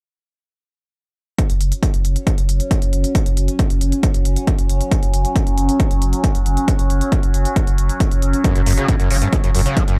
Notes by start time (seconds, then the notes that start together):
1.39 F#3 C#4, kick, closed hi-hat
1.50 F#1, closed hi-hat
1.61 F#1, closed hi-hat
1.72 closed hi-hat
1.83 kick, closed hi-hat
1.94 F#1, closed hi-hat
2.05 F#1, closed hi-hat
2.16 closed hi-hat
2.27 kick, closed hi-hat
2.38 F#1, closed hi-hat
2.49 F#1, closed hi-hat
2.60 closed hi-hat
2.71 kick, closed hi-hat
2.82 F#1, closed hi-hat
2.93 F#1, closed hi-hat
3.04 closed hi-hat
3.15 kick, closed hi-hat
3.26 F#1, closed hi-hat
3.37 F#1, closed hi-hat
3.48 closed hi-hat
3.59 kick, closed hi-hat
3.70 F#1, closed hi-hat
3.81 F#1, closed hi-hat
3.92 closed hi-hat
4.03 kick, closed hi-hat
4.14 F#1, closed hi-hat
4.25 F#1, closed hi-hat
4.36 closed hi-hat
4.47 kick, closed hi-hat
4.59 F#1, closed hi-hat
4.69 F#1, closed hi-hat
4.81 closed hi-hat
4.92 kick, closed hi-hat
5.03 F#1, closed hi-hat
5.14 F#1, closed hi-hat
5.25 closed hi-hat
5.36 kick, closed hi-hat
5.47 F#1, closed hi-hat
5.58 F#1, closed hi-hat
5.69 closed hi-hat
5.80 kick, closed hi-hat
5.91 F#1, closed hi-hat
6.02 F#1, closed hi-hat
6.13 closed hi-hat
6.24 kick, closed hi-hat
6.35 F#1, closed hi-hat
6.46 F#1, closed hi-hat
6.57 closed hi-hat
6.68 kick, closed hi-hat
6.79 F#1, closed hi-hat
6.90 F#1, closed hi-hat
7.01 closed hi-hat
7.12 kick, closed hi-hat
7.23 F#1, closed hi-hat
7.34 F#1, closed hi-hat
7.45 closed hi-hat
7.56 kick, closed hi-hat
7.67 F#1, closed hi-hat
7.78 F#1, closed hi-hat
7.89 closed hi-hat
8.00 kick, closed hi-hat
8.11 F#1, closed hi-hat
8.22 F#1, closed hi-hat
8.33 closed hi-hat
8.44 F#2, kick, closed hi-hat
8.56 F#1 F#2, closed hi-hat
8.66 F#1 F#2, open hi-hat
8.78 C#3, closed hi-hat
8.88 A2, kick, closed hi-hat
9.00 F#1 F#2, closed hi-hat
9.11 F#1 C#3, open hi-hat
9.22 G2, closed hi-hat
9.33 F#2, kick, closed hi-hat
9.44 F#1 F#2, closed hi-hat
9.55 F#1 F#2, open hi-hat
9.66 C#3, closed hi-hat
9.77 F#3, kick, closed hi-hat
9.88 F#1 F#2, closed hi-hat